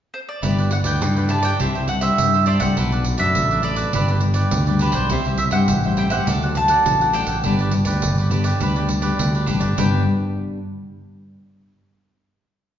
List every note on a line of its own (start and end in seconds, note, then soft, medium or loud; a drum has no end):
0.14 0.19 C5 medium
0.29 0.74 D5 medium
0.42 0.80 G1 medium
0.42 0.98 G3 medium
0.42 0.82 D4 medium
0.42 0.56 E4 medium
0.42 0.82 E4 medium
0.42 0.56 G4 medium
0.42 0.82 B4 medium
0.42 0.57 B4 medium
0.42 0.57 D5 medium
0.42 pandeiro medium
0.58 0.70 G4 soft
0.58 0.70 B4 soft
0.58 0.70 D5 soft
0.58 pandeiro soft
0.70 0.77 F#5 medium
0.70 muted cavaquinho stroke soft
0.70 pandeiro medium
0.84 1.02 D2 medium
0.84 1.10 D4 medium
0.84 1.10 E4 medium
0.84 1.15 G4 soft
0.84 1.10 B4 medium
0.84 1.14 B4 medium
0.84 1.13 D5 medium
0.84 1.30 G5 medium
0.84 pandeiro medium
1.01 1.51 G2 medium
1.01 1.57 D3 soft
1.01 pandeiro medium
1.16 1.56 D4 medium
1.16 1.56 E4 medium
1.16 1.28 G4 soft
1.16 1.56 B4 medium
1.16 1.29 B4 soft
1.16 1.30 D5 soft
1.16 pandeiro soft
1.29 1.43 E4 soft
1.29 1.44 G4 soft
1.29 1.42 B4 soft
1.29 1.41 D5 medium
1.29 1.44 A5 medium
1.29 pandeiro medium
1.42 1.59 G4 soft
1.42 1.58 B4 medium
1.42 1.57 D5 medium
1.42 1.88 G5 medium
1.42 pandeiro medium
1.59 2.10 C2 medium
1.59 2.16 C3 medium
1.59 1.88 G3 soft
1.59 1.73 D4 medium
1.59 1.88 D4 soft
1.59 1.88 E4 medium
1.59 1.74 G4 medium
1.59 1.74 C5 medium
1.59 1.73 E5 medium
1.59 pandeiro medium
1.74 1.87 G4 soft
1.74 1.87 C5 soft
1.74 1.88 E5 soft
1.74 pandeiro soft
1.87 2.02 F#5 medium
1.87 muted cavaquinho stroke soft
1.87 pandeiro medium
2.01 2.18 G3 medium
2.01 2.27 D4 medium
2.01 2.28 E4 medium
2.01 2.31 G4 soft
2.01 2.31 C5 medium
2.01 2.30 E5 medium
2.01 2.44 E5 medium
2.01 pandeiro medium
2.18 2.56 G2 medium
2.18 2.33 G3 soft
2.18 pandeiro medium
2.34 2.58 G3 medium
2.34 2.58 D4 medium
2.34 2.59 E4 medium
2.34 2.46 G4 soft
2.34 2.46 C5 soft
2.34 2.47 E5 soft
2.34 pandeiro soft
2.46 2.60 D4 medium
2.46 2.61 G4 medium
2.46 2.60 C5 medium
2.46 2.61 D5 medium
2.46 2.58 E5 medium
2.46 pandeiro medium
2.59 2.74 C2 medium
2.59 3.15 F#3 medium
2.59 3.15 A3 medium
2.59 3.15 D4 medium
2.59 2.76 G4 soft
2.59 2.75 C5 soft
2.59 2.74 E5 soft
2.59 3.19 F#5 medium
2.59 pandeiro medium
2.76 3.15 B1 medium
2.76 3.32 B2 medium
2.76 2.90 D4 medium
2.76 2.90 A4 medium
2.76 2.91 B4 medium
2.76 2.91 D5 medium
2.76 pandeiro medium
2.92 3.05 A4 soft
2.92 3.05 B4 soft
2.92 3.05 D5 soft
2.92 pandeiro soft
3.04 muted cavaquinho stroke soft
3.04 pandeiro medium
3.17 3.38 F#2 medium
3.17 3.58 F#3 medium
3.17 3.59 A3 medium
3.17 3.59 D4 medium
3.17 3.48 A4 soft
3.17 3.48 B4 medium
3.17 3.47 D5 medium
3.17 3.61 E5 medium
3.17 pandeiro medium
3.35 3.86 A1 medium
3.35 3.91 F#2 soft
3.35 pandeiro medium
3.50 3.61 A4 soft
3.50 3.62 B4 soft
3.50 3.63 D5 soft
3.50 pandeiro soft
3.62 3.89 F#3 medium
3.62 3.89 A3 medium
3.62 3.77 D4 soft
3.62 3.89 D4 medium
3.62 3.77 A4 soft
3.62 3.75 B4 medium
3.62 3.74 D5 soft
3.62 4.82 D5 medium
3.62 pandeiro medium
3.76 3.92 A4 medium
3.76 3.91 B4 medium
3.76 3.91 D5 medium
3.76 pandeiro medium
3.93 4.44 G1 medium
3.93 4.50 G2 soft
3.93 4.11 G3 soft
3.93 4.11 B3 medium
3.93 4.07 D4 medium
3.93 4.12 D4 medium
3.93 4.07 G4 medium
3.93 4.08 B4 medium
3.93 4.08 D5 medium
3.93 pandeiro medium
4.08 4.20 G4 soft
4.08 4.21 B4 soft
4.08 4.21 D5 soft
4.08 pandeiro soft
4.20 4.62 G3 medium
4.20 4.62 B3 soft
4.20 4.62 D4 medium
4.20 muted cavaquinho stroke soft
4.20 pandeiro medium
4.34 4.65 G4 soft
4.34 4.65 B4 medium
4.34 4.64 D5 medium
4.34 pandeiro medium
4.51 4.90 D2 medium
4.51 5.08 D3 soft
4.51 pandeiro medium
4.67 5.06 G3 medium
4.67 5.07 B3 medium
4.67 5.07 D4 medium
4.67 4.80 G4 soft
4.67 4.81 B4 soft
4.67 4.81 D5 soft
4.67 pandeiro soft
4.79 4.94 D4 medium
4.79 4.95 G4 medium
4.79 4.92 B4 medium
4.79 4.93 B4 medium
4.79 4.92 D5 medium
4.79 pandeiro medium
4.92 5.07 B1 medium
4.92 5.10 G4 soft
4.92 5.09 B4 soft
4.92 5.40 C5 medium
4.92 5.08 D5 soft
4.92 pandeiro medium
5.10 5.48 C2 medium
5.10 5.66 C3 medium
5.10 5.19 G3 medium
5.10 5.19 C4 medium
5.10 5.24 E4 medium
5.10 5.20 E4 medium
5.10 5.24 G4 medium
5.10 5.25 C5 medium
5.10 5.25 E5 medium
5.10 pandeiro medium
5.25 5.50 G3 medium
5.25 5.50 C4 medium
5.25 5.50 E4 medium
5.25 5.38 G4 soft
5.25 5.38 C5 soft
5.25 5.39 E5 soft
5.25 pandeiro soft
5.38 5.43 E5 medium
5.38 muted cavaquinho stroke soft
5.38 pandeiro medium
5.51 5.71 G2 medium
5.51 5.92 G3 medium
5.51 5.93 C4 medium
5.51 5.93 E4 medium
5.51 5.82 G4 soft
5.51 5.82 C5 medium
5.51 5.81 E5 medium
5.51 5.97 F#5 medium
5.51 pandeiro medium
5.68 6.19 A1 medium
5.68 6.25 G2 soft
5.68 pandeiro medium
5.84 5.96 G4 soft
5.84 5.97 C5 soft
5.84 5.98 E5 soft
5.84 pandeiro soft
5.97 6.16 G3 soft
5.97 6.17 C4 medium
5.97 6.11 E4 soft
5.97 6.17 E4 medium
5.97 6.11 G4 soft
5.97 6.10 C5 medium
5.97 6.09 E5 soft
5.97 6.11 G5 medium
5.97 pandeiro soft
6.10 6.26 G4 medium
6.10 6.26 C5 medium
6.10 6.25 E5 medium
6.10 6.57 F#5 medium
6.10 pandeiro medium
6.27 6.77 D2 medium
6.27 6.83 D3 medium
6.27 6.36 F#3 medium
6.27 6.36 A3 medium
6.27 6.41 D4 medium
6.27 6.36 D4 medium
6.27 6.41 A4 medium
6.27 6.42 D5 medium
6.27 6.42 F#5 medium
6.27 pandeiro medium
6.42 6.67 F#3 medium
6.42 6.67 A3 medium
6.42 6.67 D4 medium
6.42 6.55 A4 soft
6.42 6.55 D5 soft
6.42 6.56 F#5 soft
6.42 pandeiro soft
6.55 7.11 A5 medium
6.55 muted cavaquinho stroke soft
6.55 pandeiro medium
6.68 7.09 F#3 medium
6.68 7.09 A3 medium
6.68 7.09 D4 medium
6.68 6.99 A4 soft
6.68 6.99 D5 medium
6.68 6.98 F#5 medium
6.68 pandeiro medium
6.86 7.23 A1 medium
6.86 7.42 A2 soft
6.86 pandeiro medium
7.01 7.13 A4 soft
7.01 7.14 D5 soft
7.01 7.14 F#5 soft
7.01 pandeiro soft
7.13 7.33 F#3 soft
7.13 7.34 A3 medium
7.13 7.28 D4 medium
7.13 7.34 D4 medium
7.13 7.28 A4 medium
7.13 7.27 D5 medium
7.13 7.26 F#5 medium
7.13 9.15 G5 medium
7.13 pandeiro soft
7.27 7.41 A1 medium
7.27 7.43 A4 soft
7.27 7.42 D5 soft
7.27 7.42 F#5 soft
7.27 pandeiro medium
7.44 7.82 G1 medium
7.44 8.00 G2 medium
7.44 7.72 G3 medium
7.44 7.72 B3 medium
7.44 7.58 D4 medium
7.44 7.72 D4 medium
7.44 7.58 G4 medium
7.44 7.59 B4 medium
7.44 7.59 D5 medium
7.44 pandeiro medium
7.59 7.72 G4 soft
7.59 7.73 B4 soft
7.59 7.73 D5 soft
7.59 pandeiro soft
7.71 muted cavaquinho stroke soft
7.71 pandeiro medium
7.85 8.05 D2 medium
7.85 8.26 G3 soft
7.85 8.26 B3 medium
7.85 8.26 D4 medium
7.85 8.16 G4 soft
7.85 8.16 B4 medium
7.85 8.15 D5 medium
7.85 pandeiro medium
8.02 8.53 G1 medium
8.02 8.59 D3 soft
8.02 pandeiro medium
8.18 8.30 G4 soft
8.18 8.30 B4 soft
8.18 8.31 D5 soft
8.18 pandeiro soft
8.30 8.49 G3 medium
8.30 8.49 B3 soft
8.30 8.44 D4 soft
8.30 8.49 D4 medium
8.30 8.45 G4 soft
8.30 8.43 B4 medium
8.30 8.43 D5 medium
8.30 pandeiro soft
8.44 8.60 G4 medium
8.44 8.59 B4 medium
8.44 8.59 D5 medium
8.44 pandeiro medium
8.60 9.11 D2 medium
8.60 9.16 G2 medium
8.60 9.00 G3 soft
8.60 9.00 B3 medium
8.60 8.74 D4 medium
8.60 9.00 D4 medium
8.60 8.75 G4 medium
8.60 8.75 B4 medium
8.60 8.75 D5 medium
8.60 pandeiro medium
8.76 8.88 G4 soft
8.76 8.89 B4 soft
8.76 8.89 D5 soft
8.76 pandeiro soft
8.89 muted cavaquinho stroke soft
8.89 pandeiro medium
9.02 9.43 G3 medium
9.02 9.43 B3 medium
9.02 9.43 D4 medium
9.02 9.32 G4 soft
9.02 9.32 B4 medium
9.02 9.31 D5 medium
9.02 pandeiro medium
9.19 9.44 D2 medium
9.19 9.75 D3 medium
9.19 pandeiro medium
9.35 9.46 G4 soft
9.35 9.47 B4 soft
9.35 9.48 D5 soft
9.35 pandeiro soft
9.46 9.61 A1 medium
9.46 9.73 G3 medium
9.46 9.73 B3 soft
9.46 9.61 D4 medium
9.46 9.73 D4 medium
9.46 9.61 G4 medium
9.46 9.60 B4 medium
9.46 9.59 D5 medium
9.46 pandeiro medium
9.60 9.75 G1 medium
9.60 9.76 G4 soft
9.60 9.76 B4 soft
9.60 9.75 D5 soft
9.60 pandeiro medium
9.77 10.05 G1 medium
9.77 10.58 G2 medium
9.77 10.58 G3 medium
9.77 10.58 B3 medium
9.77 10.01 D4 medium
9.77 10.58 D4 medium
9.77 10.01 G4 medium
9.77 10.01 B4 medium
9.77 10.02 D5 medium
9.77 10.05 G5 medium
9.77 pandeiro medium